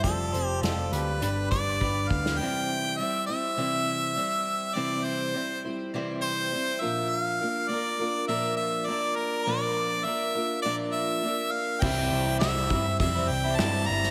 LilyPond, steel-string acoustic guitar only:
\new Staff \with { instrumentName = "Steel-string acoustic guitar" } { \time 4/4 \key g \mixolydian \tempo 4 = 102 <f g c' g' a'>8 <c' g' a'>8 <g c' g' a'>8 <c' g' a'>8 <g d' g' b'>8 <d' g' b'>8 <g d' g' b'>4 | \key c \mixolydian <c e g c' e' c''>4 <g c' e' c''>8 <g c' e' c''>8 <c e g c' e' c''>4 <g c' e' c''>4 | <c e g c' e' c''>4 <g c' e' c''>8 <g c' e' c''>8 <c e g c' e' c''>4 <g c' e' c''>8 <bes, f bes d' f' bes'>8~ | <bes, f bes d' f' bes'>8 <bes d' f' bes'>8 <bes d' f' bes'>8 <bes d' f' bes'>8 <bes, f bes d' f' bes'>4 <bes d' f' bes'>4 |
<bes, f bes d' f' bes'>4 <bes d' f' bes'>8 <bes d' f' bes'>8 <bes, f bes d' f' bes'>4 <bes d' f' bes'>4 | <c e g c' e' c''>4 <g c' e' c''>8 <g c' e' c''>8 <c e g c' e' c''>4 <g c' e' c''>4 | }